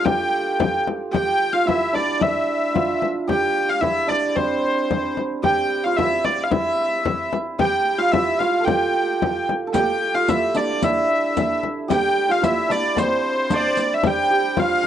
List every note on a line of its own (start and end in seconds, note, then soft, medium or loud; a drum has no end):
0.00 1.35 D4 medium
0.00 1.53 F4 medium
0.00 1.83 A4 medium
0.04 1.13 G4 medium
0.04 0.82 G5 medium
0.04 frame drum medium
0.60 frame drum medium
0.87 frame drum medium
1.13 3.27 G4 medium
1.13 1.53 G5 medium
1.13 frame drum medium
1.53 1.71 F4 medium
1.53 1.67 F5 medium
1.65 2.19 E4 medium
1.65 1.94 E5 medium
1.65 frame drum medium
1.93 4.07 D4 medium
1.93 2.22 D5 medium
1.93 frame drum medium
2.19 2.80 E4 medium
2.19 3.03 E5 medium
2.19 frame drum medium
2.74 3.87 F4 medium
2.74 frame drum medium
3.02 frame drum medium
3.27 5.42 G4 medium
3.27 3.69 G5 medium
3.27 frame drum medium
3.69 3.83 F5 medium
3.81 5.91 E4 medium
3.81 4.09 E5 medium
3.81 frame drum medium
4.07 7.80 D4 medium
4.07 4.36 D5 medium
4.07 frame drum medium
4.35 8.35 C4 medium
4.35 5.17 C5 medium
4.35 frame drum medium
4.64 frame drum soft
4.91 frame drum medium
5.17 frame drum medium
5.43 7.59 G4 medium
5.43 5.84 G5 medium
5.43 frame drum medium
5.84 6.05 F4 medium
5.84 5.97 F5 medium
5.96 6.52 E4 medium
5.96 6.24 E5 loud
5.96 frame drum medium
6.24 6.45 D5 medium
6.24 frame drum medium
6.43 6.51 F5 medium
6.51 8.04 E4 medium
6.51 7.32 E5 medium
6.51 frame drum medium
7.05 frame drum medium
7.33 frame drum medium
7.59 8.65 G4 medium
7.59 7.98 G5 loud
7.59 frame drum medium
7.98 8.19 F4 medium
7.98 8.12 F5 medium
8.12 8.46 E4 medium
8.12 8.39 E5 medium
8.12 frame drum medium
8.39 10.14 F4 medium
8.39 8.66 F5 medium
8.39 frame drum medium
8.60 9.67 A4 medium
8.64 9.74 G4 medium
8.64 9.46 G5 medium
8.64 frame drum medium
9.22 frame drum medium
9.49 frame drum medium
9.67 12.60 A4 medium
9.74 11.88 G4 medium
9.74 10.15 G5 medium
9.74 riq medium
9.74 frame drum medium
10.15 10.34 F4 medium
10.15 10.29 F5 medium
10.28 10.83 E4 medium
10.28 10.57 E5 loud
10.28 riq medium
10.28 frame drum medium
10.55 12.68 D4 medium
10.55 10.84 D5 medium
10.55 riq medium
10.55 frame drum medium
10.82 12.35 E4 medium
10.82 11.60 E5 medium
10.82 riq medium
10.82 frame drum medium
11.37 riq medium
11.37 frame drum medium
11.63 frame drum medium
11.88 14.03 G4 medium
11.88 12.31 G5 loud
11.88 riq medium
11.88 frame drum medium
12.29 12.48 F4 medium
12.29 12.44 F5 medium
12.42 14.63 E4 medium
12.42 12.71 E5 loud
12.42 riq medium
12.42 frame drum medium
12.69 13.50 D4 medium
12.69 12.98 D5 medium
12.69 riq soft
12.69 frame drum medium
12.96 14.87 C4 medium
12.96 13.74 C5 medium
12.96 riq medium
12.96 frame drum medium
13.50 14.87 D4 medium
13.50 riq medium
13.50 frame drum medium
13.55 13.94 D5 medium
13.77 riq soft
13.77 frame drum medium
13.94 14.07 E5 medium
14.03 14.30 G4 medium
14.03 frame drum medium
14.07 14.59 G5 loud
14.30 14.87 G4 medium
14.57 14.87 F4 medium
14.57 14.87 F5 loud
14.57 frame drum medium
14.84 frame drum medium